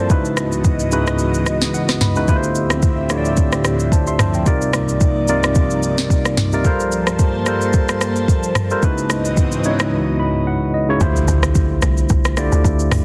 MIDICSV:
0, 0, Header, 1, 7, 480
1, 0, Start_track
1, 0, Tempo, 545455
1, 88, Time_signature, 4, 2, 24, 8
1, 11482, End_track
2, 0, Start_track
2, 0, Title_t, "Tine electric piano"
2, 0, Program_c, 0, 4
2, 0, Control_c, 0, 64, 127
2, 0, Note_on_c, 0, 55, 87
2, 0, Note_on_c, 0, 60, 56
2, 0, Note_on_c, 0, 64, 62
2, 0, Note_on_c, 0, 65, 55
2, 0, Note_on_c, 0, 69, 65
2, 0, Note_on_c, 0, 70, 78
2, 0, Note_on_c, 0, 72, 74
2, 0, Note_on_c, 0, 74, 63
2, 87, Note_on_c, 0, 49, 87
2, 87, Note_on_c, 0, 56, 78
2, 89, Note_on_c, 0, 63, 75
2, 92, Note_off_c, 0, 64, 0
2, 92, Note_on_c, 0, 64, 77
2, 94, Note_on_c, 0, 66, 75
2, 98, Note_on_c, 0, 71, 89
2, 99, Note_off_c, 0, 72, 0
2, 99, Control_c, 0, 64, 0
2, 100, Note_off_c, 0, 55, 0
2, 101, Note_off_c, 0, 69, 0
2, 105, Note_off_c, 0, 60, 0
2, 105, Note_off_c, 0, 70, 0
2, 210, Note_off_c, 0, 74, 0
2, 213, Note_off_c, 0, 65, 0
2, 256, Control_c, 0, 64, 127
2, 673, Note_off_c, 0, 49, 0
2, 673, Note_off_c, 0, 56, 0
2, 674, Note_off_c, 0, 63, 0
2, 676, Note_off_c, 0, 64, 0
2, 677, Note_off_c, 0, 66, 0
2, 679, Note_off_c, 0, 71, 0
2, 807, Note_on_c, 0, 49, 85
2, 810, Note_on_c, 0, 56, 78
2, 811, Note_on_c, 0, 63, 79
2, 813, Note_on_c, 0, 64, 77
2, 815, Note_on_c, 0, 66, 77
2, 818, Note_on_c, 0, 71, 93
2, 1293, Note_on_c, 0, 75, 73
2, 1514, Note_off_c, 0, 75, 0
2, 1531, Note_on_c, 0, 78, 72
2, 1580, Note_off_c, 0, 49, 0
2, 1582, Note_off_c, 0, 56, 0
2, 1583, Note_off_c, 0, 63, 0
2, 1584, Note_off_c, 0, 64, 0
2, 1584, Note_off_c, 0, 66, 0
2, 1586, Note_off_c, 0, 71, 0
2, 1753, Note_off_c, 0, 78, 0
2, 1770, Note_on_c, 0, 83, 72
2, 1900, Note_on_c, 0, 49, 79
2, 1903, Note_on_c, 0, 56, 76
2, 1903, Note_on_c, 0, 63, 80
2, 1907, Note_on_c, 0, 64, 75
2, 1909, Note_on_c, 0, 71, 88
2, 1910, Note_on_c, 0, 66, 76
2, 1986, Note_off_c, 0, 49, 0
2, 1988, Note_off_c, 0, 56, 0
2, 1988, Note_off_c, 0, 63, 0
2, 1990, Note_off_c, 0, 64, 0
2, 1991, Note_off_c, 0, 66, 0
2, 1991, Note_off_c, 0, 71, 0
2, 1992, Note_off_c, 0, 83, 0
2, 2006, Note_on_c, 0, 50, 84
2, 2009, Note_on_c, 0, 57, 78
2, 2010, Note_on_c, 0, 64, 76
2, 2013, Note_on_c, 0, 65, 80
2, 2015, Note_on_c, 0, 67, 77
2, 2017, Note_on_c, 0, 71, 73
2, 2019, Control_c, 0, 64, 0
2, 2075, Note_on_c, 0, 72, 95
2, 2076, Note_off_c, 0, 71, 0
2, 2186, Control_c, 0, 64, 127
2, 2593, Note_off_c, 0, 50, 0
2, 2594, Note_off_c, 0, 57, 0
2, 2595, Note_off_c, 0, 64, 0
2, 2596, Note_off_c, 0, 65, 0
2, 2597, Note_off_c, 0, 67, 0
2, 2627, Note_off_c, 0, 72, 0
2, 2728, Note_on_c, 0, 50, 85
2, 2730, Note_on_c, 0, 57, 75
2, 2732, Note_on_c, 0, 64, 77
2, 2734, Note_on_c, 0, 65, 80
2, 2735, Note_on_c, 0, 67, 77
2, 2737, Note_on_c, 0, 73, 75
2, 2795, Note_off_c, 0, 73, 0
2, 2795, Note_on_c, 0, 74, 93
2, 3453, Note_on_c, 0, 81, 64
2, 3458, Note_on_c, 0, 72, 56
2, 3481, Note_off_c, 0, 74, 0
2, 3501, Note_off_c, 0, 50, 0
2, 3502, Note_off_c, 0, 57, 0
2, 3503, Note_off_c, 0, 64, 0
2, 3504, Note_off_c, 0, 65, 0
2, 3505, Note_off_c, 0, 67, 0
2, 3576, Note_off_c, 0, 81, 0
2, 3579, Note_off_c, 0, 72, 0
2, 3586, Note_on_c, 0, 84, 69
2, 3591, Note_on_c, 0, 76, 61
2, 3686, Note_off_c, 0, 84, 0
2, 3689, Note_off_c, 0, 76, 0
2, 3693, Note_on_c, 0, 81, 74
2, 3699, Note_on_c, 0, 72, 61
2, 3816, Note_off_c, 0, 81, 0
2, 3819, Note_off_c, 0, 72, 0
2, 3825, Note_on_c, 0, 79, 61
2, 3926, Note_on_c, 0, 48, 81
2, 3928, Note_on_c, 0, 55, 75
2, 3932, Note_on_c, 0, 63, 79
2, 3932, Note_on_c, 0, 65, 76
2, 3936, Note_on_c, 0, 70, 79
2, 3938, Note_on_c, 0, 74, 93
2, 3940, Control_c, 0, 64, 0
2, 4051, Note_off_c, 0, 79, 0
2, 4087, Control_c, 0, 64, 127
2, 4513, Note_off_c, 0, 48, 0
2, 4514, Note_off_c, 0, 55, 0
2, 4516, Note_off_c, 0, 63, 0
2, 4516, Note_off_c, 0, 65, 0
2, 4517, Note_off_c, 0, 70, 0
2, 4519, Note_off_c, 0, 74, 0
2, 4651, Note_on_c, 0, 48, 85
2, 4653, Note_on_c, 0, 55, 79
2, 4655, Note_on_c, 0, 63, 78
2, 4658, Note_on_c, 0, 65, 82
2, 4658, Note_on_c, 0, 70, 77
2, 4661, Note_on_c, 0, 74, 96
2, 5423, Note_off_c, 0, 48, 0
2, 5423, Note_off_c, 0, 55, 0
2, 5424, Note_off_c, 0, 63, 0
2, 5426, Note_off_c, 0, 65, 0
2, 5426, Note_off_c, 0, 70, 0
2, 5427, Note_off_c, 0, 74, 0
2, 5745, Note_on_c, 0, 48, 88
2, 5749, Note_on_c, 0, 55, 78
2, 5751, Note_on_c, 0, 63, 77
2, 5752, Note_on_c, 0, 65, 79
2, 5754, Note_on_c, 0, 70, 80
2, 5757, Note_on_c, 0, 74, 93
2, 5829, Note_off_c, 0, 48, 0
2, 5831, Note_off_c, 0, 55, 0
2, 5832, Note_off_c, 0, 63, 0
2, 5833, Note_off_c, 0, 65, 0
2, 5834, Note_off_c, 0, 70, 0
2, 5835, Note_off_c, 0, 74, 0
2, 5853, Note_on_c, 0, 55, 89
2, 5856, Note_on_c, 0, 65, 79
2, 5859, Control_c, 0, 64, 0
2, 5860, Note_on_c, 0, 69, 77
2, 5861, Note_on_c, 0, 70, 79
2, 5864, Note_on_c, 0, 72, 94
2, 6035, Control_c, 0, 64, 127
2, 6436, Note_off_c, 0, 55, 0
2, 6438, Note_off_c, 0, 65, 0
2, 6440, Note_off_c, 0, 69, 0
2, 6440, Note_off_c, 0, 70, 0
2, 6441, Note_off_c, 0, 72, 0
2, 6573, Note_on_c, 0, 55, 89
2, 6575, Note_on_c, 0, 65, 80
2, 6577, Note_on_c, 0, 69, 80
2, 6579, Note_on_c, 0, 70, 79
2, 6583, Note_on_c, 0, 72, 99
2, 7343, Note_off_c, 0, 55, 0
2, 7344, Note_off_c, 0, 65, 0
2, 7345, Note_off_c, 0, 69, 0
2, 7346, Note_off_c, 0, 70, 0
2, 7349, Note_off_c, 0, 72, 0
2, 7663, Note_on_c, 0, 55, 87
2, 7664, Note_on_c, 0, 65, 74
2, 7667, Note_on_c, 0, 69, 78
2, 7670, Note_on_c, 0, 70, 80
2, 7672, Note_on_c, 0, 72, 90
2, 7748, Note_off_c, 0, 55, 0
2, 7749, Note_off_c, 0, 65, 0
2, 7750, Note_off_c, 0, 69, 0
2, 7752, Note_off_c, 0, 70, 0
2, 7753, Note_off_c, 0, 72, 0
2, 7772, Note_on_c, 0, 49, 84
2, 7774, Note_on_c, 0, 56, 78
2, 7776, Note_on_c, 0, 63, 77
2, 7779, Note_on_c, 0, 64, 77
2, 7780, Note_on_c, 0, 66, 80
2, 7781, Control_c, 0, 64, 0
2, 7783, Note_on_c, 0, 71, 93
2, 7912, Control_c, 0, 64, 127
2, 8356, Note_off_c, 0, 49, 0
2, 8357, Note_off_c, 0, 56, 0
2, 8358, Note_off_c, 0, 63, 0
2, 8359, Note_off_c, 0, 64, 0
2, 8360, Note_off_c, 0, 66, 0
2, 8361, Note_off_c, 0, 71, 0
2, 8488, Note_on_c, 0, 49, 82
2, 8490, Note_on_c, 0, 56, 80
2, 8493, Note_on_c, 0, 63, 76
2, 8495, Note_on_c, 0, 64, 80
2, 8497, Note_on_c, 0, 66, 76
2, 8499, Note_on_c, 0, 73, 92
2, 8972, Note_on_c, 0, 83, 74
2, 9193, Note_off_c, 0, 83, 0
2, 9214, Note_on_c, 0, 78, 75
2, 9261, Note_off_c, 0, 49, 0
2, 9262, Note_off_c, 0, 56, 0
2, 9264, Note_off_c, 0, 63, 0
2, 9265, Note_off_c, 0, 64, 0
2, 9265, Note_off_c, 0, 66, 0
2, 9266, Note_off_c, 0, 73, 0
2, 9435, Note_off_c, 0, 78, 0
2, 9451, Note_on_c, 0, 75, 73
2, 9580, Note_on_c, 0, 49, 86
2, 9582, Note_on_c, 0, 56, 78
2, 9583, Note_on_c, 0, 63, 72
2, 9585, Note_on_c, 0, 64, 75
2, 9588, Note_on_c, 0, 66, 75
2, 9591, Note_on_c, 0, 73, 90
2, 9667, Note_off_c, 0, 49, 0
2, 9667, Note_off_c, 0, 56, 0
2, 9668, Note_off_c, 0, 63, 0
2, 9669, Note_off_c, 0, 64, 0
2, 9671, Note_off_c, 0, 66, 0
2, 9672, Note_off_c, 0, 73, 0
2, 9673, Note_off_c, 0, 75, 0
2, 9686, Note_on_c, 0, 50, 88
2, 9689, Note_on_c, 0, 57, 79
2, 9690, Note_on_c, 0, 64, 82
2, 9693, Note_on_c, 0, 65, 81
2, 9694, Note_on_c, 0, 67, 82
2, 9698, Note_on_c, 0, 72, 96
2, 9700, Control_c, 0, 64, 0
2, 9872, Control_c, 0, 64, 127
2, 10460, Note_off_c, 0, 50, 0
2, 10461, Note_off_c, 0, 57, 0
2, 10462, Note_off_c, 0, 64, 0
2, 10463, Note_off_c, 0, 65, 0
2, 10464, Note_off_c, 0, 67, 0
2, 10466, Note_off_c, 0, 72, 0
2, 10887, Note_on_c, 0, 50, 89
2, 10889, Note_on_c, 0, 57, 79
2, 10892, Note_on_c, 0, 64, 79
2, 10894, Note_on_c, 0, 65, 80
2, 10896, Note_on_c, 0, 67, 84
2, 10898, Note_on_c, 0, 74, 96
2, 11473, Note_off_c, 0, 50, 0
2, 11474, Note_off_c, 0, 57, 0
2, 11476, Note_off_c, 0, 64, 0
2, 11477, Note_off_c, 0, 65, 0
2, 11478, Note_off_c, 0, 67, 0
2, 11479, Note_off_c, 0, 74, 0
2, 11482, End_track
3, 0, Start_track
3, 0, Title_t, "Analog synth pad"
3, 0, Program_c, 1, 89
3, 91, Note_on_c, 1, 37, 84
3, 92, Note_on_c, 1, 44, 76
3, 93, Note_on_c, 1, 52, 77
3, 93, Note_on_c, 1, 66, 73
3, 94, Note_on_c, 1, 59, 78
3, 94, Note_on_c, 1, 75, 95
3, 1991, Note_off_c, 1, 37, 0
3, 1991, Note_off_c, 1, 44, 0
3, 1991, Note_off_c, 1, 52, 0
3, 1991, Note_off_c, 1, 66, 0
3, 1992, Note_off_c, 1, 59, 0
3, 1992, Note_off_c, 1, 75, 0
3, 2007, Note_on_c, 1, 67, 76
3, 2008, Note_on_c, 1, 38, 85
3, 2008, Note_on_c, 1, 53, 75
3, 2009, Note_on_c, 1, 76, 94
3, 2010, Note_on_c, 1, 45, 77
3, 2010, Note_on_c, 1, 60, 79
3, 3908, Note_off_c, 1, 67, 0
3, 3909, Note_off_c, 1, 38, 0
3, 3909, Note_off_c, 1, 76, 0
3, 3910, Note_off_c, 1, 45, 0
3, 3910, Note_off_c, 1, 60, 0
3, 3929, Note_on_c, 1, 58, 75
3, 3929, Note_on_c, 1, 74, 92
3, 3930, Note_on_c, 1, 36, 85
3, 3930, Note_on_c, 1, 43, 76
3, 3930, Note_on_c, 1, 63, 77
3, 5829, Note_off_c, 1, 58, 0
3, 5829, Note_off_c, 1, 74, 0
3, 5830, Note_off_c, 1, 36, 0
3, 5830, Note_off_c, 1, 43, 0
3, 5830, Note_off_c, 1, 63, 0
3, 5851, Note_on_c, 1, 43, 87
3, 5851, Note_on_c, 1, 81, 75
3, 5854, Note_on_c, 1, 58, 74
3, 5854, Note_on_c, 1, 72, 96
3, 7733, Note_off_c, 1, 53, 0
3, 7751, Note_off_c, 1, 43, 0
3, 7751, Note_off_c, 1, 81, 0
3, 7752, Note_off_c, 1, 58, 0
3, 7752, Note_off_c, 1, 72, 0
3, 7770, Note_on_c, 1, 59, 77
3, 7770, Note_on_c, 1, 66, 75
3, 7770, Note_on_c, 1, 75, 97
3, 7771, Note_on_c, 1, 37, 84
3, 7771, Note_on_c, 1, 44, 77
3, 7772, Note_on_c, 1, 52, 78
3, 9670, Note_off_c, 1, 37, 0
3, 9670, Note_off_c, 1, 59, 0
3, 9670, Note_off_c, 1, 66, 0
3, 9670, Note_off_c, 1, 75, 0
3, 9671, Note_off_c, 1, 44, 0
3, 9671, Note_off_c, 1, 52, 0
3, 11482, End_track
4, 0, Start_track
4, 0, Title_t, "Log drum bass"
4, 0, Program_c, 2, 39
4, 9687, Note_on_c, 2, 38, 118
4, 9910, Note_off_c, 2, 38, 0
4, 9926, Note_on_c, 2, 38, 101
4, 10372, Note_off_c, 2, 38, 0
4, 10407, Note_on_c, 2, 36, 93
4, 10630, Note_off_c, 2, 36, 0
4, 10648, Note_on_c, 2, 36, 104
4, 10993, Note_off_c, 2, 36, 0
4, 11019, Note_on_c, 2, 38, 94
4, 11119, Note_off_c, 2, 38, 0
4, 11128, Note_on_c, 2, 38, 93
4, 11351, Note_off_c, 2, 38, 0
4, 11368, Note_on_c, 2, 38, 97
4, 11482, Note_off_c, 2, 38, 0
4, 11482, End_track
5, 0, Start_track
5, 0, Title_t, "Impact"
5, 0, Program_c, 3, 103
5, 9689, Note_on_c, 3, 60, 88
5, 11482, Note_off_c, 3, 60, 0
5, 11482, End_track
6, 0, Start_track
6, 0, Title_t, "Swell"
6, 0, Program_c, 4, 103
6, 5851, Note_on_c, 4, 60, 83
6, 8730, Note_off_c, 4, 60, 0
6, 11482, End_track
7, 0, Start_track
7, 0, Title_t, "Drums"
7, 87, Note_on_c, 9, 36, 109
7, 87, Note_on_c, 9, 82, 64
7, 175, Note_off_c, 9, 36, 0
7, 175, Note_off_c, 9, 82, 0
7, 221, Note_on_c, 9, 82, 50
7, 309, Note_off_c, 9, 82, 0
7, 326, Note_on_c, 9, 37, 91
7, 327, Note_on_c, 9, 82, 93
7, 414, Note_off_c, 9, 37, 0
7, 415, Note_off_c, 9, 82, 0
7, 460, Note_on_c, 9, 82, 55
7, 548, Note_off_c, 9, 82, 0
7, 567, Note_on_c, 9, 82, 76
7, 568, Note_on_c, 9, 36, 96
7, 655, Note_off_c, 9, 82, 0
7, 656, Note_off_c, 9, 36, 0
7, 700, Note_on_c, 9, 82, 57
7, 788, Note_off_c, 9, 82, 0
7, 807, Note_on_c, 9, 82, 105
7, 895, Note_off_c, 9, 82, 0
7, 942, Note_on_c, 9, 82, 49
7, 946, Note_on_c, 9, 37, 93
7, 1030, Note_off_c, 9, 82, 0
7, 1034, Note_off_c, 9, 37, 0
7, 1044, Note_on_c, 9, 82, 79
7, 1132, Note_off_c, 9, 82, 0
7, 1180, Note_on_c, 9, 82, 51
7, 1268, Note_off_c, 9, 82, 0
7, 1288, Note_on_c, 9, 37, 91
7, 1289, Note_on_c, 9, 82, 101
7, 1376, Note_off_c, 9, 37, 0
7, 1377, Note_off_c, 9, 82, 0
7, 1420, Note_on_c, 9, 82, 48
7, 1422, Note_on_c, 9, 38, 69
7, 1508, Note_off_c, 9, 82, 0
7, 1510, Note_off_c, 9, 38, 0
7, 1535, Note_on_c, 9, 82, 82
7, 1623, Note_off_c, 9, 82, 0
7, 1661, Note_on_c, 9, 82, 51
7, 1662, Note_on_c, 9, 37, 82
7, 1662, Note_on_c, 9, 38, 60
7, 1749, Note_off_c, 9, 82, 0
7, 1750, Note_off_c, 9, 37, 0
7, 1750, Note_off_c, 9, 38, 0
7, 1768, Note_on_c, 9, 38, 66
7, 1769, Note_on_c, 9, 45, 93
7, 1773, Note_on_c, 9, 82, 99
7, 1856, Note_off_c, 9, 38, 0
7, 1857, Note_off_c, 9, 45, 0
7, 1861, Note_off_c, 9, 82, 0
7, 1898, Note_on_c, 9, 82, 47
7, 1986, Note_off_c, 9, 82, 0
7, 2007, Note_on_c, 9, 36, 106
7, 2007, Note_on_c, 9, 82, 64
7, 2095, Note_off_c, 9, 36, 0
7, 2095, Note_off_c, 9, 82, 0
7, 2142, Note_on_c, 9, 82, 51
7, 2230, Note_off_c, 9, 82, 0
7, 2247, Note_on_c, 9, 82, 97
7, 2335, Note_off_c, 9, 82, 0
7, 2378, Note_on_c, 9, 37, 93
7, 2379, Note_on_c, 9, 82, 55
7, 2466, Note_off_c, 9, 37, 0
7, 2467, Note_off_c, 9, 82, 0
7, 2486, Note_on_c, 9, 82, 74
7, 2487, Note_on_c, 9, 36, 96
7, 2574, Note_off_c, 9, 82, 0
7, 2575, Note_off_c, 9, 36, 0
7, 2725, Note_on_c, 9, 82, 99
7, 2727, Note_on_c, 9, 37, 86
7, 2813, Note_off_c, 9, 82, 0
7, 2815, Note_off_c, 9, 37, 0
7, 2860, Note_on_c, 9, 82, 47
7, 2948, Note_off_c, 9, 82, 0
7, 2964, Note_on_c, 9, 82, 79
7, 2969, Note_on_c, 9, 36, 120
7, 3052, Note_off_c, 9, 82, 0
7, 3057, Note_off_c, 9, 36, 0
7, 3099, Note_on_c, 9, 82, 52
7, 3103, Note_on_c, 9, 37, 84
7, 3187, Note_off_c, 9, 82, 0
7, 3191, Note_off_c, 9, 37, 0
7, 3208, Note_on_c, 9, 37, 89
7, 3209, Note_on_c, 9, 82, 99
7, 3296, Note_off_c, 9, 37, 0
7, 3297, Note_off_c, 9, 82, 0
7, 3340, Note_on_c, 9, 82, 49
7, 3428, Note_off_c, 9, 82, 0
7, 3449, Note_on_c, 9, 36, 92
7, 3455, Note_on_c, 9, 82, 79
7, 3537, Note_off_c, 9, 36, 0
7, 3543, Note_off_c, 9, 82, 0
7, 3581, Note_on_c, 9, 82, 52
7, 3669, Note_off_c, 9, 82, 0
7, 3688, Note_on_c, 9, 37, 98
7, 3689, Note_on_c, 9, 45, 96
7, 3693, Note_on_c, 9, 82, 102
7, 3776, Note_off_c, 9, 37, 0
7, 3777, Note_off_c, 9, 45, 0
7, 3781, Note_off_c, 9, 82, 0
7, 3819, Note_on_c, 9, 82, 46
7, 3907, Note_off_c, 9, 82, 0
7, 3927, Note_on_c, 9, 82, 64
7, 3928, Note_on_c, 9, 36, 111
7, 4015, Note_off_c, 9, 82, 0
7, 4016, Note_off_c, 9, 36, 0
7, 4062, Note_on_c, 9, 82, 50
7, 4150, Note_off_c, 9, 82, 0
7, 4166, Note_on_c, 9, 37, 97
7, 4167, Note_on_c, 9, 82, 97
7, 4254, Note_off_c, 9, 37, 0
7, 4255, Note_off_c, 9, 82, 0
7, 4300, Note_on_c, 9, 82, 57
7, 4388, Note_off_c, 9, 82, 0
7, 4406, Note_on_c, 9, 82, 75
7, 4408, Note_on_c, 9, 36, 97
7, 4494, Note_off_c, 9, 82, 0
7, 4496, Note_off_c, 9, 36, 0
7, 4646, Note_on_c, 9, 82, 98
7, 4734, Note_off_c, 9, 82, 0
7, 4781, Note_on_c, 9, 82, 47
7, 4786, Note_on_c, 9, 37, 96
7, 4869, Note_off_c, 9, 82, 0
7, 4874, Note_off_c, 9, 37, 0
7, 4884, Note_on_c, 9, 82, 83
7, 4890, Note_on_c, 9, 36, 115
7, 4972, Note_off_c, 9, 82, 0
7, 4978, Note_off_c, 9, 36, 0
7, 5021, Note_on_c, 9, 82, 52
7, 5109, Note_off_c, 9, 82, 0
7, 5130, Note_on_c, 9, 82, 103
7, 5218, Note_off_c, 9, 82, 0
7, 5261, Note_on_c, 9, 82, 47
7, 5264, Note_on_c, 9, 38, 67
7, 5349, Note_off_c, 9, 82, 0
7, 5352, Note_off_c, 9, 38, 0
7, 5370, Note_on_c, 9, 36, 94
7, 5376, Note_on_c, 9, 82, 79
7, 5458, Note_off_c, 9, 36, 0
7, 5464, Note_off_c, 9, 82, 0
7, 5503, Note_on_c, 9, 82, 54
7, 5504, Note_on_c, 9, 37, 80
7, 5591, Note_off_c, 9, 82, 0
7, 5592, Note_off_c, 9, 37, 0
7, 5609, Note_on_c, 9, 38, 71
7, 5610, Note_on_c, 9, 45, 94
7, 5614, Note_on_c, 9, 82, 97
7, 5697, Note_off_c, 9, 38, 0
7, 5698, Note_off_c, 9, 45, 0
7, 5702, Note_off_c, 9, 82, 0
7, 5742, Note_on_c, 9, 82, 45
7, 5830, Note_off_c, 9, 82, 0
7, 5848, Note_on_c, 9, 82, 64
7, 5849, Note_on_c, 9, 36, 108
7, 5936, Note_off_c, 9, 82, 0
7, 5937, Note_off_c, 9, 36, 0
7, 5984, Note_on_c, 9, 82, 50
7, 6072, Note_off_c, 9, 82, 0
7, 6089, Note_on_c, 9, 82, 90
7, 6177, Note_off_c, 9, 82, 0
7, 6220, Note_on_c, 9, 37, 91
7, 6221, Note_on_c, 9, 82, 56
7, 6308, Note_off_c, 9, 37, 0
7, 6309, Note_off_c, 9, 82, 0
7, 6328, Note_on_c, 9, 82, 73
7, 6329, Note_on_c, 9, 36, 93
7, 6416, Note_off_c, 9, 82, 0
7, 6417, Note_off_c, 9, 36, 0
7, 6566, Note_on_c, 9, 82, 98
7, 6568, Note_on_c, 9, 37, 87
7, 6654, Note_off_c, 9, 82, 0
7, 6656, Note_off_c, 9, 37, 0
7, 6699, Note_on_c, 9, 82, 50
7, 6787, Note_off_c, 9, 82, 0
7, 6805, Note_on_c, 9, 82, 80
7, 6810, Note_on_c, 9, 36, 118
7, 6893, Note_off_c, 9, 82, 0
7, 6898, Note_off_c, 9, 36, 0
7, 6940, Note_on_c, 9, 82, 53
7, 6944, Note_on_c, 9, 37, 89
7, 7028, Note_off_c, 9, 82, 0
7, 7032, Note_off_c, 9, 37, 0
7, 7050, Note_on_c, 9, 37, 92
7, 7051, Note_on_c, 9, 82, 109
7, 7138, Note_off_c, 9, 37, 0
7, 7139, Note_off_c, 9, 82, 0
7, 7180, Note_on_c, 9, 82, 47
7, 7268, Note_off_c, 9, 82, 0
7, 7289, Note_on_c, 9, 36, 92
7, 7295, Note_on_c, 9, 82, 77
7, 7377, Note_off_c, 9, 36, 0
7, 7383, Note_off_c, 9, 82, 0
7, 7421, Note_on_c, 9, 82, 54
7, 7509, Note_off_c, 9, 82, 0
7, 7526, Note_on_c, 9, 37, 100
7, 7527, Note_on_c, 9, 45, 92
7, 7531, Note_on_c, 9, 82, 100
7, 7614, Note_off_c, 9, 37, 0
7, 7615, Note_off_c, 9, 45, 0
7, 7619, Note_off_c, 9, 82, 0
7, 7659, Note_on_c, 9, 82, 47
7, 7747, Note_off_c, 9, 82, 0
7, 7767, Note_on_c, 9, 82, 65
7, 7768, Note_on_c, 9, 36, 108
7, 7855, Note_off_c, 9, 82, 0
7, 7856, Note_off_c, 9, 36, 0
7, 7902, Note_on_c, 9, 82, 53
7, 7990, Note_off_c, 9, 82, 0
7, 8006, Note_on_c, 9, 37, 92
7, 8008, Note_on_c, 9, 82, 94
7, 8094, Note_off_c, 9, 37, 0
7, 8096, Note_off_c, 9, 82, 0
7, 8140, Note_on_c, 9, 82, 56
7, 8228, Note_off_c, 9, 82, 0
7, 8245, Note_on_c, 9, 82, 76
7, 8247, Note_on_c, 9, 36, 95
7, 8333, Note_off_c, 9, 82, 0
7, 8335, Note_off_c, 9, 36, 0
7, 8377, Note_on_c, 9, 82, 59
7, 8465, Note_off_c, 9, 82, 0
7, 8484, Note_on_c, 9, 82, 97
7, 8572, Note_off_c, 9, 82, 0
7, 8618, Note_on_c, 9, 82, 48
7, 8623, Note_on_c, 9, 37, 99
7, 8706, Note_off_c, 9, 82, 0
7, 8711, Note_off_c, 9, 37, 0
7, 9686, Note_on_c, 9, 82, 65
7, 9687, Note_on_c, 9, 36, 118
7, 9774, Note_off_c, 9, 82, 0
7, 9775, Note_off_c, 9, 36, 0
7, 9822, Note_on_c, 9, 82, 50
7, 9910, Note_off_c, 9, 82, 0
7, 9927, Note_on_c, 9, 82, 95
7, 10015, Note_off_c, 9, 82, 0
7, 10058, Note_on_c, 9, 37, 93
7, 10059, Note_on_c, 9, 82, 56
7, 10146, Note_off_c, 9, 37, 0
7, 10147, Note_off_c, 9, 82, 0
7, 10165, Note_on_c, 9, 82, 78
7, 10167, Note_on_c, 9, 36, 98
7, 10253, Note_off_c, 9, 82, 0
7, 10255, Note_off_c, 9, 36, 0
7, 10403, Note_on_c, 9, 82, 109
7, 10405, Note_on_c, 9, 37, 88
7, 10491, Note_off_c, 9, 82, 0
7, 10493, Note_off_c, 9, 37, 0
7, 10537, Note_on_c, 9, 82, 50
7, 10625, Note_off_c, 9, 82, 0
7, 10642, Note_on_c, 9, 82, 85
7, 10648, Note_on_c, 9, 36, 118
7, 10730, Note_off_c, 9, 82, 0
7, 10736, Note_off_c, 9, 36, 0
7, 10778, Note_on_c, 9, 82, 52
7, 10781, Note_on_c, 9, 37, 91
7, 10866, Note_off_c, 9, 82, 0
7, 10869, Note_off_c, 9, 37, 0
7, 10887, Note_on_c, 9, 37, 92
7, 10887, Note_on_c, 9, 82, 105
7, 10975, Note_off_c, 9, 37, 0
7, 10975, Note_off_c, 9, 82, 0
7, 11019, Note_on_c, 9, 82, 52
7, 11107, Note_off_c, 9, 82, 0
7, 11128, Note_on_c, 9, 36, 94
7, 11134, Note_on_c, 9, 82, 82
7, 11216, Note_off_c, 9, 36, 0
7, 11222, Note_off_c, 9, 82, 0
7, 11259, Note_on_c, 9, 82, 56
7, 11347, Note_off_c, 9, 82, 0
7, 11365, Note_on_c, 9, 37, 102
7, 11366, Note_on_c, 9, 45, 97
7, 11370, Note_on_c, 9, 46, 83
7, 11370, Note_on_c, 9, 82, 104
7, 11453, Note_off_c, 9, 37, 0
7, 11454, Note_off_c, 9, 45, 0
7, 11458, Note_off_c, 9, 46, 0
7, 11458, Note_off_c, 9, 82, 0
7, 11482, End_track
0, 0, End_of_file